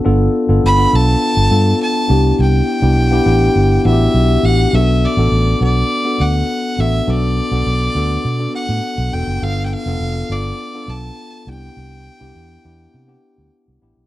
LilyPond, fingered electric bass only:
\new Staff \with { instrumentName = "Fingered electric bass" } { \clef bass \time 4/4 \key b \phrygian \tempo 4 = 102 g,,8 r16 g,,16 g,,8 b,,8 r16 g,,16 g,8 r8 c,8 | c,8 r16 c,16 b,,8 a,,8 g,,8 a,,8 b,,8 a,,8 | b,,8. a,,16 a,,8 b,,8 r8 d,8 r8 a,,8 | b,,8. b,,16 b,,8 d,8 b,8 r16 a,16 r16 b,,16 e,,16 fis,,16 |
g,,8. f,,16 f,,8 g,,8 r8 b,,8 r8 c,8 | c,8. c,16 e,8 e,8 c8 r16 d,16 r16 c,16 a,,16 b,,16 | }